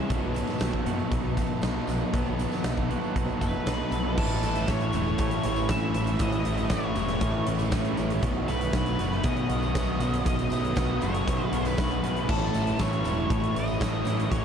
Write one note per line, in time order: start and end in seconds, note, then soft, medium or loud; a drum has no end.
0.00 0.10 G#3 medium
0.00 0.10 C#4 loud
0.00 0.10 G#4 medium
0.09 0.41 B1 loud
0.09 2.12 B2 loud
0.09 1.11 B2 medium
0.09 1.11 D#3 loud
0.09 0.34 F#3 medium
0.09 0.88 F#3 loud
0.09 2.13 F#3 loud
0.09 0.87 B3 loud
0.09 2.13 B3 loud
0.09 0.87 D#4 loud
0.09 0.85 A4 loud
0.09 kick loud
0.09 closed hi-hat loud
0.09 tambourine soft
0.34 1.63 F#3 medium
0.34 closed hi-hat medium
0.34 tambourine medium
0.47 snare soft
0.47 tambourine medium
0.59 0.76 B1 loud
0.59 1.61 B2 medium
0.59 0.88 F#3 loud
0.59 1.37 A3 medium
0.59 0.84 B3 loud
0.59 snare loud
0.59 closed hi-hat loud
0.59 tambourine loud
0.73 kick medium
0.73 tambourine soft
0.84 1.02 F#2 medium
0.84 1.63 F#3 medium
0.84 1.64 B3 medium
0.84 1.12 B3 medium
0.84 1.12 D#4 medium
0.84 2.14 F#4 medium
0.84 1.13 A4 medium
0.84 closed hi-hat medium
0.88 1.11 F#3 medium
0.99 tambourine soft
1.11 1.42 B1 medium
1.11 1.62 B2 medium
1.11 1.63 D#3 medium
1.11 1.38 F#3 medium
1.11 1.37 B3 loud
1.11 1.61 D#4 medium
1.11 1.36 D#4 medium
1.11 1.36 A4 medium
1.11 kick loud
1.11 closed hi-hat loud
1.25 tambourine soft
1.36 1.61 F#3 medium
1.36 2.63 A3 medium
1.36 1.62 B3 medium
1.36 1.63 D#4 medium
1.36 1.64 A4 medium
1.36 kick medium
1.36 closed hi-hat medium
1.36 tambourine medium
1.61 1.78 B1 medium
1.61 2.12 B2 medium
1.61 1.89 F#3 medium
1.61 1.90 F#3 medium
1.61 1.88 B3 medium
1.61 1.86 B3 medium
1.61 2.90 D#4 medium
1.61 1.87 D#4 medium
1.61 1.87 A4 medium
1.61 snare loud
1.61 closed hi-hat loud
1.61 tambourine loud
1.87 2.03 B1 medium
1.87 2.13 F#3 medium
1.87 2.15 B3 medium
1.87 2.13 B3 medium
1.87 2.13 D#4 medium
1.87 2.14 A4 medium
1.87 closed hi-hat medium
1.87 tambourine medium
1.91 2.13 F#3 medium
2.12 2.45 B1 loud
2.12 3.14 B2 medium
2.12 4.15 B2 medium
2.12 3.14 D#3 loud
2.12 2.91 F#3 loud
2.12 2.38 F#3 medium
2.12 4.16 F#3 medium
2.12 2.90 B3 loud
2.12 2.89 D#4 loud
2.12 2.88 A4 loud
2.12 kick loud
2.12 closed hi-hat loud
2.16 4.17 B3 loud
2.26 tambourine soft
2.39 3.66 F#3 medium
2.39 closed hi-hat medium
2.39 tambourine medium
2.52 snare soft
2.52 tambourine medium
2.64 2.95 B1 medium
2.64 3.15 B2 medium
2.64 2.92 F#3 loud
2.64 3.40 A3 medium
2.64 2.88 B3 medium
2.64 snare loud
2.64 closed hi-hat loud
2.64 tambourine loud
2.77 kick medium
2.77 tambourine soft
2.89 3.15 F#3 medium
2.89 3.67 F#3 medium
2.89 3.69 B3 medium
2.89 3.15 B3 medium
2.89 3.16 D#4 medium
2.89 4.17 F#4 medium
2.89 3.17 A4 medium
2.89 closed hi-hat medium
3.04 tambourine soft
3.15 3.31 B1 medium
3.15 3.66 B2 medium
3.15 3.66 D#3 medium
3.15 3.42 F#3 medium
3.15 3.42 B3 medium
3.15 3.66 D#4 medium
3.15 3.41 D#4 medium
3.15 3.39 A4 loud
3.15 kick loud
3.15 closed hi-hat medium
3.29 tambourine soft
3.41 3.57 F#1 medium
3.41 3.65 F#3 medium
3.41 4.17 A3 medium
3.41 3.66 B3 medium
3.41 3.67 D#4 medium
3.41 3.68 A4 medium
3.41 4.17 B4 medium
3.41 kick medium
3.41 closed hi-hat medium
3.41 tambourine medium
3.53 tambourine soft
3.66 3.81 B1 medium
3.66 4.15 B2 medium
3.66 3.93 F#3 medium
3.66 3.94 F#3 medium
3.66 3.93 B3 medium
3.66 4.18 D#4 medium
3.66 3.91 D#4 medium
3.66 3.91 A4 medium
3.66 snare loud
3.66 closed hi-hat medium
3.66 tambourine loud
3.70 3.90 B3 medium
3.91 4.17 B1 medium
3.91 4.17 F#3 medium
3.91 4.16 B3 medium
3.91 4.17 B3 medium
3.91 4.16 D#4 medium
3.91 4.16 A4 medium
3.91 closed hi-hat medium
3.91 tambourine medium
3.95 4.17 F#3 medium
4.17 4.39 A1 medium
4.17 5.42 A2 medium
4.17 4.42 A2 medium
4.17 5.43 E3 loud
4.17 4.67 E3 medium
4.17 4.43 E3 loud
4.17 4.43 A3 loud
4.17 5.45 A3 loud
4.17 5.44 C#4 loud
4.17 5.42 E4 loud
4.17 4.70 A4 medium
4.17 kick loud
4.17 crash loud
4.42 4.64 A1 loud
4.42 4.67 A2 medium
4.42 4.68 E3 medium
4.42 4.68 A3 loud
4.42 4.94 A3 medium
4.42 closed hi-hat medium
4.42 tambourine medium
4.55 closed hi-hat soft
4.67 4.90 A1 medium
4.67 4.93 A2 loud
4.67 4.93 E3 loud
4.67 5.43 E3 medium
4.67 4.94 A3 loud
4.67 5.19 C#5 medium
4.67 kick loud
4.67 snare loud
4.67 closed hi-hat loud
4.67 tambourine loud
4.81 closed hi-hat soft
4.92 5.15 E1 loud
4.92 5.18 A2 medium
4.92 5.18 E3 medium
4.92 6.45 A3 medium
4.92 5.20 A3 loud
4.92 closed hi-hat medium
4.92 tambourine medium
5.06 tambourine soft
5.18 5.40 A2 loud
5.18 5.43 A2 loud
5.18 5.44 E3 loud
5.18 5.45 A3 loud
5.18 5.69 C#4 medium
5.18 5.68 C#5 loud
5.18 kick loud
5.18 closed hi-hat loud
5.31 closed hi-hat medium
5.43 5.66 A1 loud
5.43 5.68 A2 medium
5.43 5.94 E3 medium
5.43 5.69 E3 medium
5.43 5.68 E3 medium
5.43 5.70 A3 medium
5.43 5.71 C#4 medium
5.43 5.68 E4 medium
5.43 closed hi-hat medium
5.56 tambourine medium
5.69 5.91 A1 loud
5.69 6.18 A2 medium
5.69 5.94 A2 loud
5.69 6.19 E3 medium
5.69 5.94 E3 loud
5.69 6.21 A3 medium
5.69 5.95 A3 loud
5.69 7.21 C#4 medium
5.69 6.22 C#4 medium
5.69 6.20 E4 medium
5.69 6.20 E5 loud
5.69 kick loud
5.69 snare loud
5.69 closed hi-hat loud
5.69 tambourine loud
5.94 6.17 A1 medium
5.94 6.20 A2 medium
5.94 6.19 E3 medium
5.94 6.20 E3 medium
5.94 6.21 A3 medium
5.94 closed hi-hat medium
5.94 tambourine medium
6.07 closed hi-hat medium
6.07 tambourine soft
6.19 6.42 A1 loud
6.19 7.45 A2 loud
6.19 6.44 A2 medium
6.19 7.46 E3 loud
6.19 6.70 E3 medium
6.19 6.45 E3 loud
6.19 7.47 A3 loud
6.19 6.46 A3 loud
6.19 7.46 C#4 loud
6.19 7.45 E4 loud
6.19 6.71 D#5 loud
6.19 kick loud
6.19 closed hi-hat loud
6.33 closed hi-hat soft
6.45 6.67 A1 loud
6.45 6.69 A2 medium
6.45 6.70 E3 medium
6.45 6.96 A3 medium
6.45 6.71 A3 medium
6.45 closed hi-hat medium
6.58 closed hi-hat medium
6.58 tambourine soft
6.70 6.92 A1 medium
6.70 6.95 A2 loud
6.70 7.45 E3 medium
6.70 6.96 E3 loud
6.70 6.97 A3 loud
6.70 7.43 C#5 medium
6.70 kick loud
6.70 snare loud
6.70 closed hi-hat loud
6.70 tambourine loud
6.95 7.18 E1 loud
6.95 7.21 A2 medium
6.95 7.21 E3 medium
6.95 8.26 A3 medium
6.95 7.23 A3 loud
6.95 closed hi-hat medium
6.95 tambourine medium
7.08 snare soft
7.08 closed hi-hat medium
7.08 tambourine soft
7.21 7.43 A2 medium
7.21 7.46 A2 loud
7.21 7.47 E3 loud
7.21 7.48 A3 loud
7.21 7.71 C#4 medium
7.21 kick loud
7.21 closed hi-hat loud
7.46 7.69 A1 medium
7.46 7.71 A2 medium
7.46 7.69 A2 medium
7.46 7.96 E3 medium
7.46 7.72 E3 medium
7.46 7.70 E3 medium
7.46 7.72 A3 medium
7.46 7.73 A3 loud
7.46 7.73 C#4 medium
7.46 7.70 E4 medium
7.46 closed hi-hat medium
7.59 closed hi-hat soft
7.59 tambourine medium
7.70 7.94 A1 medium
7.70 8.21 A2 medium
7.70 7.97 A2 loud
7.70 8.21 E3 medium
7.70 7.98 E3 loud
7.70 8.23 A3 medium
7.70 7.99 A3 loud
7.70 8.26 C#4 medium
7.70 8.24 C#4 medium
7.70 8.22 E4 medium
7.70 kick loud
7.70 snare loud
7.70 closed hi-hat loud
7.70 tambourine loud
7.85 closed hi-hat soft
7.97 8.20 A1 medium
7.97 8.22 A2 medium
7.97 8.22 E3 medium
7.97 8.24 A3 medium
7.97 closed hi-hat medium
7.97 tambourine medium
8.10 closed hi-hat soft
8.10 tambourine soft
8.22 8.45 B1 loud
8.22 9.48 B2 loud
8.22 8.48 B2 loud
8.22 8.72 D#3 medium
8.22 9.48 D#3 loud
8.22 8.49 F#3 loud
8.22 9.50 A3 loud
8.22 8.50 B3 loud
8.22 9.49 B3 medium
8.22 9.47 F#4 loud
8.22 kick loud
8.22 closed hi-hat loud
8.48 8.70 B1 loud
8.48 8.73 B2 medium
8.48 8.74 F#3 loud
8.48 8.98 A3 medium
8.48 8.75 B3 loud
8.48 9.27 B4 medium
8.48 closed hi-hat medium
8.48 tambourine medium
8.61 closed hi-hat medium
8.61 tambourine soft
8.73 8.95 B1 medium
8.73 8.99 B2 medium
8.73 9.49 D#3 medium
8.73 9.00 F#3 loud
8.73 9.00 B3 loud
8.73 kick loud
8.73 snare loud
8.73 closed hi-hat loud
8.73 tambourine loud
8.86 closed hi-hat medium
8.86 tambourine soft
8.98 9.21 F#1 medium
8.98 9.24 B2 medium
8.98 9.24 F#3 medium
8.98 10.29 A3 medium
8.98 9.25 B3 loud
8.98 closed hi-hat medium
8.98 tambourine medium
9.12 snare soft
9.12 tambourine soft
9.24 9.46 B2 loud
9.24 9.49 B2 loud
9.24 9.50 F#3 loud
9.24 9.50 B3 loud
9.24 9.75 C#4 medium
9.24 10.22 D#5 loud
9.24 kick loud
9.24 closed hi-hat loud
9.37 closed hi-hat soft
9.49 9.71 B1 medium
9.49 9.75 B2 medium
9.49 9.73 B2 medium
9.49 9.99 D#3 medium
9.49 9.74 D#3 medium
9.49 9.76 F#3 medium
9.49 9.76 A3 medium
9.49 9.74 B3 medium
9.49 9.76 B3 loud
9.49 9.73 F#4 medium
9.49 closed hi-hat medium
9.62 tambourine medium
9.75 9.97 B1 medium
9.75 10.24 B2 medium
9.75 10.00 B2 medium
9.75 10.25 D#3 medium
9.75 10.00 F#3 loud
9.75 10.27 A3 medium
9.75 10.25 B3 medium
9.75 10.01 B3 loud
9.75 11.27 C#4 medium
9.75 10.26 F#4 medium
9.75 kick loud
9.75 snare loud
9.75 closed hi-hat loud
9.75 tambourine loud
10.00 10.22 B1 loud
10.00 10.25 B2 medium
10.00 10.25 D#3 medium
10.00 10.26 F#3 medium
10.00 10.26 B3 medium
10.00 closed hi-hat medium
10.00 tambourine medium
10.13 closed hi-hat medium
10.13 tambourine soft
10.25 10.48 B1 medium
10.25 11.51 B2 medium
10.25 10.51 B2 loud
10.25 10.76 D#3 medium
10.25 11.51 D#3 medium
10.25 10.52 F#3 loud
10.25 11.53 A3 medium
10.25 10.52 B3 loud
10.25 11.51 B3 loud
10.25 11.51 F#4 loud
10.25 11.03 D#5 loud
10.25 kick loud
10.25 closed hi-hat loud
10.39 closed hi-hat medium
10.39 tambourine soft
10.50 10.73 B1 medium
10.50 10.76 B2 medium
10.50 10.77 F#3 loud
10.50 11.02 A3 medium
10.50 10.78 B3 loud
10.50 closed hi-hat medium
10.50 tambourine medium
10.63 closed hi-hat soft
10.63 tambourine soft
10.76 10.98 B1 medium
10.76 11.02 B2 medium
10.76 11.52 D#3 medium
10.76 11.03 F#3 loud
10.76 11.03 B3 loud
10.76 kick loud
10.76 snare loud
10.76 closed hi-hat loud
10.76 tambourine loud
10.89 tambourine soft
11.01 11.24 F#1 loud
11.01 11.27 B2 medium
11.01 11.28 F#3 loud
11.01 14.45 A3 medium
11.01 11.28 B3 medium
11.01 11.55 C#5 loud
11.01 closed hi-hat medium
11.01 tambourine medium
11.15 closed hi-hat medium
11.15 tambourine soft
11.27 11.49 B2 medium
11.27 11.52 B2 loud
11.27 11.53 F#3 loud
11.27 11.53 B3 loud
11.27 11.78 C#4 medium
11.27 kick loud
11.27 closed hi-hat loud
11.27 tambourine soft
11.40 tambourine soft
11.52 11.74 B1 loud
11.52 11.78 B2 medium
11.52 11.75 B2 medium
11.52 12.02 D#3 medium
11.52 11.77 D#3 medium
11.52 11.79 F#3 loud
11.52 11.78 A3 medium
11.52 11.76 B3 medium
11.52 11.79 B3 loud
11.52 11.76 F#4 medium
11.52 12.30 B4 medium
11.52 closed hi-hat medium
11.65 closed hi-hat soft
11.65 tambourine medium
11.76 12.00 B1 medium
11.76 12.26 B2 medium
11.76 12.03 B2 loud
11.76 12.27 D#3 medium
11.76 12.04 F#3 loud
11.76 12.29 A3 medium
11.76 12.28 B3 medium
11.76 12.04 B3 loud
11.76 14.45 C#4 medium
11.76 12.28 F#4 medium
11.76 kick loud
11.76 snare loud
11.76 closed hi-hat loud
11.76 tambourine loud
11.91 closed hi-hat soft
12.03 12.25 B1 medium
12.03 12.28 B2 medium
12.03 12.28 D#3 medium
12.03 12.28 F#3 medium
12.03 12.28 B3 loud
12.03 closed hi-hat medium
12.15 closed hi-hat soft
12.15 tambourine soft
12.28 12.51 A1 medium
12.28 13.53 A2 medium
12.28 12.54 A2 loud
12.28 12.78 E3 medium
12.28 13.54 E3 medium
12.28 12.55 E3 loud
12.28 13.56 A3 medium
12.28 12.55 A3 loud
12.28 13.55 C#4 loud
12.28 13.53 E4 loud
12.28 12.82 A4 medium
12.28 kick loud
12.28 crash loud
12.54 12.76 A1 medium
12.54 12.79 A2 medium
12.54 12.80 E3 medium
12.54 12.81 A3 medium
12.54 closed hi-hat medium
12.54 tambourine medium
12.66 closed hi-hat soft
12.66 tambourine soft
12.79 13.01 A1 medium
12.79 13.05 A2 medium
12.79 13.04 E3 medium
12.79 13.06 E3 loud
12.79 13.06 A3 loud
12.79 13.30 C#5 loud
12.79 kick loud
12.79 snare loud
12.79 closed hi-hat loud
12.79 tambourine loud
12.93 closed hi-hat soft
12.93 tambourine soft
13.04 13.26 E1 medium
13.04 13.30 A2 medium
13.04 13.54 E3 medium
13.04 13.30 E3 medium
13.04 13.32 A3 medium
13.04 closed hi-hat medium
13.04 tambourine medium
13.30 13.52 A2 loud
13.30 13.55 A2 loud
13.30 13.55 E3 loud
13.30 13.57 A3 loud
13.30 13.56 C#5 loud
13.30 kick loud
13.30 closed hi-hat loud
13.44 closed hi-hat soft
13.54 13.77 A1 medium
13.54 13.80 A2 medium
13.54 13.78 A2 medium
13.54 14.04 E3 medium
13.54 13.81 E3 medium
13.54 13.79 E3 medium
13.54 13.81 A3 medium
13.54 13.82 A3 medium
13.54 13.81 C#4 medium
13.54 13.78 E4 medium
13.54 14.31 D#5 loud
13.54 closed hi-hat medium
13.68 tambourine medium
13.79 14.02 A1 medium
13.79 14.29 A2 medium
13.79 14.05 A2 medium
13.79 14.29 E3 medium
13.79 14.06 E3 loud
13.79 14.32 A3 medium
13.79 14.07 A3 loud
13.79 14.32 C#4 medium
13.79 14.30 E4 medium
13.79 kick loud
13.79 snare loud
13.79 closed hi-hat loud
13.79 tambourine loud
14.05 14.27 A1 loud
14.05 14.30 A2 medium
14.05 14.30 E3 medium
14.05 14.31 E3 medium
14.05 14.32 A3 medium
14.05 closed hi-hat medium
14.05 tambourine medium
14.18 closed hi-hat medium
14.18 tambourine soft
14.30 14.45 A1 loud
14.30 14.45 A2 medium
14.30 14.45 E3 medium
14.30 14.45 E3 loud
14.30 14.45 A3 loud
14.30 14.45 C#4 loud
14.30 14.45 E4 loud
14.30 14.45 C#5 loud
14.30 kick loud
14.30 closed hi-hat loud